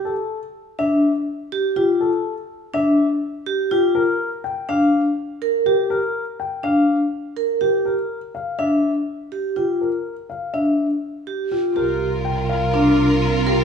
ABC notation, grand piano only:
X:1
M:4/4
L:1/8
Q:1/4=123
K:Cmix
V:1 name="Grand piano"
A z2 e z3 G | A z2 e z3 G | B z g f z3 G | B z g f z3 G |
B z f e z3 G | B z f e z3 G | B z g f B z2 G |]